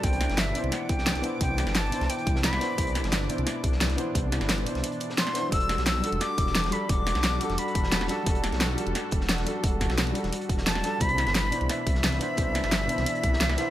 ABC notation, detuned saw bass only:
X:1
M:4/4
L:1/16
Q:1/4=175
K:Clyd
V:1 name="Detuned saw bass" clef=bass
C,,3 G,,,3 z C,, z2 C,,3 C,, z2 | C,,3 G,,,3 z C,, z2 C,,3 C,, z2 | C,,3 G,,,3 z C,, z2 C,,3 C,, z2 | C,,3 G,,,3 z C,, z8 |
E,,,3 B,,,3 z E,,, z2 E,,,3 E,,, z2 | E,,,3 B,,,3 z E,,, z2 E,,,3 E,,, z2 | E,,,3 B,,,3 z E,,, z2 E,,,3 E,,, z2 | E,,,3 B,,,3 z E,,, z2 E,,,3 E,,, z2 |
C,,3 G,,,3 z C,, z2 C,,3 C,, z2 | C,,3 G,,,3 z C,, z2 C,,3 C,, z2 |]